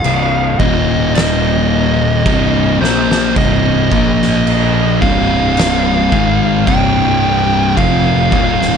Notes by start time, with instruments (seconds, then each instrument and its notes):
Already playing: lead electric guitar F5
0.03 picked electric bass C1, distorted electric guitar C2 G2, crash
0.59 picked electric bass D#1, distorted electric guitar D#2 A#2 D#3, lead electric guitar D#5, kick
1.15 lead electric guitar D#5, snare, crash
2.26 picked electric bass C1, distorted electric guitar C2 G2 C3, kick, crash
2.81 picked electric bass A#1, distorted electric guitar A#2 F3 A#3, lead electric guitar C5, snare
3.11 snare
3.36 picked electric bass C1, distorted electric guitar C2 G2 C3, lead electric guitar D#5, kick, crash
3.92 picked electric bass A#1, distorted electric guitar A#2 F3 A#3, kick
4.22 snare
4.47 crash
5.01 picked electric bass C1, distorted electric guitar C2 G2 C3, lead electric guitar F5, kick
5.57 snare, crash
6.12 picked electric bass G#1, distorted electric guitar G#2 D#3 G#3, kick
6.66 picked electric bass C1, distorted electric guitar C2 G2 C3, lead electric guitar G5, kick, crash
7.76 picked electric bass F1, distorted electric guitar F2 C3 F3, lead electric guitar F5, kick, crash
8.31 picked electric bass D#1, distorted electric guitar D#2 A#2 D#3, kick
8.62 snare